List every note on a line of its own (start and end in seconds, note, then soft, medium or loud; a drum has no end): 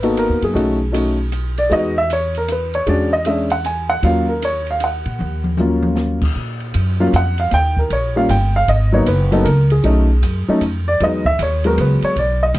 0.00 0.25 G#1 medium
0.00 0.52 A#3 medium
0.00 0.52 B3 medium
0.00 0.52 D#4 medium
0.00 0.53 F#4 medium
0.00 0.16 A4 medium
0.00 ride soft
0.17 0.42 A#4 medium
0.17 hi-hat pedal soft
0.17 ride medium
0.29 0.41 D#2 medium
0.42 0.54 F#2 medium
0.42 1.30 G#4 medium
0.42 ride soft
0.53 1.67 B1 medium
0.53 0.77 A3 medium
0.53 0.77 C#4 medium
0.53 0.77 D#4 medium
0.53 0.78 F#4 medium
0.53 kick soft
0.53 ride soft
0.92 1.15 A3 soft
0.92 1.15 C#4 soft
0.92 1.16 D#4 soft
0.92 1.16 F#4 medium
0.92 hi-hat pedal soft
0.92 ride medium
1.32 hi-hat pedal soft
1.32 ride medium
1.58 1.71 D5 medium
1.58 ride soft
1.70 2.83 E2 medium
1.70 1.93 G#3 medium
1.70 1.93 B3 medium
1.70 1.94 D#4 medium
1.70 1.94 F#4 medium
1.70 1.96 D#5 medium
1.70 kick soft
1.70 ride soft
1.98 2.10 E5 medium
2.10 2.36 C#5 medium
2.10 hi-hat pedal medium
2.10 ride medium
2.35 2.49 A#4 medium
2.35 ride soft
2.48 2.75 B4 medium
2.48 hi-hat pedal medium
2.48 ride medium
2.74 2.87 C#5 medium
2.74 ride soft
2.86 3.99 E2 medium
2.86 3.10 G#3 medium
2.86 3.10 C#4 medium
2.86 3.10 D4 medium
2.86 3.11 F#4 medium
2.86 3.13 D5 medium
2.86 kick soft
2.86 ride soft
3.13 3.26 D#5 medium
3.25 3.49 G#3 medium
3.25 3.49 C#4 soft
3.25 3.49 D4 medium
3.25 3.50 G#4 medium
3.25 3.51 E5 medium
3.25 hi-hat pedal medium
3.25 ride medium
3.50 3.65 F#5 medium
3.50 ride soft
3.64 3.90 G#5 medium
3.64 hi-hat pedal medium
3.64 ride medium
3.90 4.03 F#5 medium
4.03 5.02 D#2 medium
4.03 4.26 F#3 medium
4.03 4.26 A#3 soft
4.03 4.27 C#4 soft
4.03 4.27 F4 medium
4.03 4.29 F5 medium
4.03 kick soft
4.03 ride soft
4.29 4.42 A#4 medium
4.42 4.68 C#5 medium
4.42 hi-hat pedal medium
4.42 ride medium
4.66 ride soft
4.71 4.82 F5 medium
4.80 5.42 F#5 medium
4.80 hi-hat pedal medium
4.80 ride medium
5.05 5.19 A#2 medium
5.05 ride soft
5.19 6.32 D#2 medium
5.19 high tom soft
5.44 high tom medium
5.57 6.18 F#3 medium
5.57 6.18 A#3 medium
5.57 6.18 C#4 soft
5.57 6.18 F4 medium
5.57 hi-hat pedal medium
5.57 high tom medium
5.83 high tom medium
5.96 snare medium
6.21 kick medium
6.21 crash medium
6.35 6.73 A#2 medium
6.35 kick soft
6.60 ride soft
6.74 7.12 F#2 medium
6.74 kick soft
6.74 hi-hat pedal medium
6.74 ride medium
7.00 7.12 F#3 medium
7.00 7.12 A#3 medium
7.00 7.13 C#4 medium
7.00 7.13 F4 medium
7.00 7.13 F5 medium
7.13 7.51 F2 medium
7.13 7.39 F#5 medium
7.13 kick soft
7.13 hi-hat pedal medium
7.13 ride medium
7.38 7.52 F5 medium
7.38 ride soft
7.51 7.90 D#2 medium
7.51 7.77 G5 medium
7.51 kick soft
7.51 snare soft
7.51 ride soft
7.77 7.91 A#4 medium
7.77 kick soft
7.90 8.28 A#1 medium
7.90 8.16 C#5 medium
7.90 kick soft
7.90 ride medium
8.16 8.28 G3 medium
8.16 8.28 A#3 medium
8.16 8.28 C#4 medium
8.16 8.29 F4 medium
8.16 8.30 F5 medium
8.29 8.67 G1 medium
8.29 8.54 G5 medium
8.29 kick soft
8.29 hi-hat pedal medium
8.29 ride medium
8.56 8.69 F5 medium
8.68 9.06 G#1 medium
8.68 8.93 D#5 medium
8.68 kick soft
8.68 ride medium
8.92 9.05 F#3 medium
8.92 9.06 A#3 medium
8.92 9.06 B3 medium
8.92 9.06 D#4 medium
8.92 9.07 C#5 medium
9.06 9.44 F#1 medium
9.06 9.32 B4 medium
9.06 kick soft
9.06 hi-hat pedal medium
9.06 ride medium
9.32 9.44 F#3 medium
9.32 9.44 A#3 medium
9.32 9.45 B3 medium
9.32 9.45 D#4 medium
9.32 9.45 A4 medium
9.32 ride soft
9.45 9.83 C#2 medium
9.45 9.69 A#4 medium
9.45 kick soft
9.45 hi-hat pedal medium
9.45 ride medium
9.70 10.58 G#4 medium
9.70 ride soft
9.83 10.22 B1 medium
9.83 10.06 F#3 medium
9.83 10.07 A3 medium
9.83 10.07 C#4 medium
9.83 10.07 D#4 medium
9.83 kick soft
9.83 ride medium
10.23 10.46 F#2 medium
10.23 kick soft
10.23 hi-hat pedal medium
10.23 ride medium
10.48 10.60 F#3 medium
10.48 10.61 A3 medium
10.48 10.61 C#4 medium
10.48 10.61 D#4 medium
10.48 muted upright bass stroke soft
10.61 10.99 F2 medium
10.61 kick soft
10.61 ride medium
10.88 11.00 D5 medium
11.00 11.38 E2 medium
11.00 11.23 F#3 soft
11.00 11.23 G#3 soft
11.00 11.24 B3 medium
11.00 11.24 D#4 medium
11.00 11.26 D#5 medium
11.00 kick soft
11.00 ride medium
11.25 11.39 E5 medium
11.25 kick medium
11.39 11.76 D#2 medium
11.39 11.65 C#5 medium
11.39 hi-hat pedal medium
11.39 ride medium
11.64 12.14 F#3 medium
11.64 12.14 G#3 medium
11.64 12.14 B3 medium
11.64 12.14 F#4 medium
11.64 11.78 A#4 medium
11.64 ride soft
11.78 12.01 C#2 medium
11.78 12.04 B4 medium
11.78 kick soft
11.78 hi-hat pedal soft
11.78 ride medium
12.02 12.17 C#5 medium
12.02 muted upright bass stroke soft
12.02 ride soft
12.16 12.54 B1 medium
12.16 12.42 D5 medium
12.16 kick soft
12.16 ride soft
12.43 12.55 D#5 medium
12.54 12.59 D2 medium
12.54 kick soft
12.54 hi-hat pedal medium
12.54 ride medium